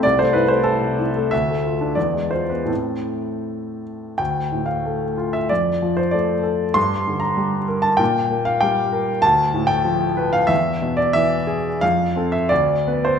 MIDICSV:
0, 0, Header, 1, 2, 480
1, 0, Start_track
1, 0, Tempo, 609756
1, 29, Time_signature, 2, 2, 24, 8
1, 509, Tempo, 659341
1, 1469, Tempo, 743494
1, 2909, Tempo, 642398
1, 4829, Tempo, 617284
1, 7229, Tempo, 655022
1, 8669, Tempo, 687285
1, 9149, Tempo, 743494
1, 9593, End_track
2, 0, Start_track
2, 0, Title_t, "Grand piano"
2, 0, Program_c, 0, 0
2, 0, Control_c, 0, 64, 127
2, 25, Note_on_c, 0, 74, 87
2, 39, Note_on_c, 0, 36, 52
2, 43, Control_c, 0, 64, 0
2, 147, Note_off_c, 0, 74, 0
2, 149, Note_on_c, 0, 72, 72
2, 155, Note_on_c, 0, 57, 49
2, 169, Control_c, 0, 64, 127
2, 261, Note_on_c, 0, 71, 73
2, 268, Note_off_c, 0, 72, 0
2, 276, Note_on_c, 0, 64, 50
2, 343, Note_off_c, 0, 57, 0
2, 381, Note_on_c, 0, 72, 72
2, 384, Note_off_c, 0, 71, 0
2, 388, Note_on_c, 0, 57, 47
2, 464, Note_off_c, 0, 64, 0
2, 501, Note_on_c, 0, 69, 77
2, 506, Note_off_c, 0, 72, 0
2, 631, Note_on_c, 0, 48, 47
2, 761, Note_on_c, 0, 64, 44
2, 777, Note_off_c, 0, 57, 0
2, 830, Note_off_c, 0, 48, 0
2, 887, Note_on_c, 0, 57, 48
2, 957, Note_off_c, 0, 64, 0
2, 977, Note_off_c, 0, 36, 0
2, 992, Note_on_c, 0, 76, 85
2, 996, Note_off_c, 0, 69, 0
2, 1005, Note_off_c, 0, 57, 0
2, 1006, Note_on_c, 0, 38, 54
2, 1011, Control_c, 0, 64, 0
2, 1130, Note_on_c, 0, 57, 43
2, 1139, Control_c, 0, 64, 127
2, 1247, Note_on_c, 0, 65, 39
2, 1309, Note_off_c, 0, 57, 0
2, 1355, Note_on_c, 0, 62, 43
2, 1427, Note_off_c, 0, 65, 0
2, 1458, Note_off_c, 0, 38, 0
2, 1460, Note_on_c, 0, 74, 57
2, 1465, Note_off_c, 0, 76, 0
2, 1471, Note_off_c, 0, 62, 0
2, 1472, Note_on_c, 0, 40, 52
2, 1479, Control_c, 0, 64, 0
2, 1584, Note_on_c, 0, 56, 34
2, 1594, Control_c, 0, 64, 127
2, 1689, Note_on_c, 0, 72, 60
2, 1690, Note_off_c, 0, 74, 0
2, 1700, Note_on_c, 0, 65, 35
2, 1769, Note_off_c, 0, 56, 0
2, 1811, Note_on_c, 0, 71, 47
2, 1812, Note_off_c, 0, 72, 0
2, 1819, Note_on_c, 0, 59, 30
2, 1892, Note_off_c, 0, 65, 0
2, 1913, Note_on_c, 0, 45, 40
2, 1922, Note_on_c, 0, 57, 27
2, 1926, Note_on_c, 0, 60, 29
2, 1927, Note_off_c, 0, 40, 0
2, 1929, Note_on_c, 0, 69, 41
2, 1932, Note_on_c, 0, 64, 27
2, 1938, Note_off_c, 0, 71, 0
2, 1942, Note_off_c, 0, 59, 0
2, 1954, Control_c, 0, 64, 0
2, 2098, Control_c, 0, 64, 127
2, 2676, Note_off_c, 0, 69, 0
2, 2870, Note_off_c, 0, 45, 0
2, 2874, Note_off_c, 0, 57, 0
2, 2876, Note_off_c, 0, 60, 0
2, 2879, Note_off_c, 0, 64, 0
2, 2898, Note_on_c, 0, 79, 65
2, 2907, Note_on_c, 0, 38, 47
2, 2923, Control_c, 0, 64, 0
2, 3050, Control_c, 0, 64, 127
2, 3153, Note_on_c, 0, 45, 34
2, 3253, Note_on_c, 0, 77, 56
2, 3266, Note_off_c, 0, 79, 0
2, 3402, Note_on_c, 0, 57, 36
2, 3541, Note_off_c, 0, 45, 0
2, 3639, Note_on_c, 0, 65, 43
2, 3753, Note_off_c, 0, 77, 0
2, 3757, Note_on_c, 0, 76, 65
2, 3791, Note_off_c, 0, 57, 0
2, 3855, Note_off_c, 0, 38, 0
2, 3879, Note_on_c, 0, 74, 69
2, 3882, Note_off_c, 0, 76, 0
2, 3885, Note_off_c, 0, 65, 0
2, 3894, Note_on_c, 0, 41, 51
2, 3898, Control_c, 0, 64, 0
2, 4037, Control_c, 0, 64, 127
2, 4124, Note_on_c, 0, 53, 40
2, 4232, Note_on_c, 0, 72, 60
2, 4238, Note_off_c, 0, 74, 0
2, 4341, Note_on_c, 0, 74, 66
2, 4354, Note_off_c, 0, 72, 0
2, 4354, Note_on_c, 0, 57, 43
2, 4500, Note_off_c, 0, 53, 0
2, 4580, Note_on_c, 0, 69, 44
2, 4733, Note_off_c, 0, 57, 0
2, 4805, Note_off_c, 0, 41, 0
2, 4811, Note_on_c, 0, 84, 84
2, 4819, Note_on_c, 0, 43, 59
2, 4820, Note_off_c, 0, 74, 0
2, 4822, Note_off_c, 0, 69, 0
2, 4841, Control_c, 0, 64, 0
2, 4945, Control_c, 0, 64, 127
2, 5071, Note_on_c, 0, 50, 40
2, 5164, Note_on_c, 0, 82, 68
2, 5180, Note_off_c, 0, 84, 0
2, 5298, Note_on_c, 0, 55, 46
2, 5452, Note_off_c, 0, 50, 0
2, 5540, Note_on_c, 0, 70, 49
2, 5649, Note_on_c, 0, 81, 81
2, 5656, Note_off_c, 0, 82, 0
2, 5688, Note_off_c, 0, 55, 0
2, 5756, Note_off_c, 0, 43, 0
2, 5765, Note_on_c, 0, 79, 84
2, 5780, Note_off_c, 0, 81, 0
2, 5783, Note_on_c, 0, 46, 62
2, 5786, Note_off_c, 0, 70, 0
2, 5803, Control_c, 0, 64, 0
2, 5909, Control_c, 0, 64, 127
2, 6026, Note_on_c, 0, 58, 47
2, 6140, Note_off_c, 0, 79, 0
2, 6141, Note_on_c, 0, 77, 80
2, 6260, Note_on_c, 0, 79, 85
2, 6267, Note_off_c, 0, 77, 0
2, 6274, Note_on_c, 0, 55, 49
2, 6414, Note_off_c, 0, 58, 0
2, 6506, Note_on_c, 0, 70, 51
2, 6655, Note_off_c, 0, 55, 0
2, 6716, Note_off_c, 0, 46, 0
2, 6737, Note_on_c, 0, 81, 95
2, 6742, Note_off_c, 0, 79, 0
2, 6745, Note_off_c, 0, 70, 0
2, 6752, Note_on_c, 0, 38, 64
2, 6760, Control_c, 0, 64, 0
2, 6882, Control_c, 0, 64, 127
2, 6987, Note_on_c, 0, 45, 50
2, 7086, Note_on_c, 0, 79, 91
2, 7101, Note_off_c, 0, 81, 0
2, 7224, Note_on_c, 0, 53, 50
2, 7372, Note_off_c, 0, 45, 0
2, 7462, Note_on_c, 0, 71, 56
2, 7576, Note_off_c, 0, 79, 0
2, 7577, Note_on_c, 0, 77, 90
2, 7607, Note_off_c, 0, 53, 0
2, 7679, Note_off_c, 0, 38, 0
2, 7681, Note_on_c, 0, 76, 90
2, 7692, Note_on_c, 0, 40, 62
2, 7701, Note_off_c, 0, 77, 0
2, 7703, Note_off_c, 0, 71, 0
2, 7717, Control_c, 0, 64, 0
2, 7857, Control_c, 0, 64, 127
2, 7939, Note_on_c, 0, 47, 45
2, 8046, Note_on_c, 0, 74, 78
2, 8053, Note_off_c, 0, 76, 0
2, 8168, Note_on_c, 0, 76, 92
2, 8175, Note_off_c, 0, 74, 0
2, 8184, Note_on_c, 0, 52, 59
2, 8326, Note_off_c, 0, 47, 0
2, 8416, Note_on_c, 0, 68, 57
2, 8572, Note_off_c, 0, 52, 0
2, 8635, Note_off_c, 0, 40, 0
2, 8663, Note_off_c, 0, 76, 0
2, 8666, Note_off_c, 0, 68, 0
2, 8666, Note_on_c, 0, 77, 91
2, 8676, Note_on_c, 0, 41, 65
2, 8685, Control_c, 0, 64, 0
2, 8820, Control_c, 0, 64, 127
2, 8909, Note_on_c, 0, 60, 46
2, 8913, Note_on_c, 0, 69, 49
2, 9020, Note_on_c, 0, 76, 74
2, 9027, Note_off_c, 0, 77, 0
2, 9127, Note_off_c, 0, 60, 0
2, 9129, Note_off_c, 0, 69, 0
2, 9139, Note_off_c, 0, 41, 0
2, 9140, Note_on_c, 0, 74, 81
2, 9146, Note_off_c, 0, 76, 0
2, 9155, Note_on_c, 0, 38, 59
2, 9161, Control_c, 0, 64, 0
2, 9298, Control_c, 0, 64, 127
2, 9387, Note_on_c, 0, 59, 49
2, 9391, Note_on_c, 0, 71, 48
2, 9499, Note_on_c, 0, 72, 76
2, 9501, Note_off_c, 0, 74, 0
2, 9593, Note_off_c, 0, 38, 0
2, 9593, Note_off_c, 0, 59, 0
2, 9593, Note_off_c, 0, 71, 0
2, 9593, Note_off_c, 0, 72, 0
2, 9593, End_track
0, 0, End_of_file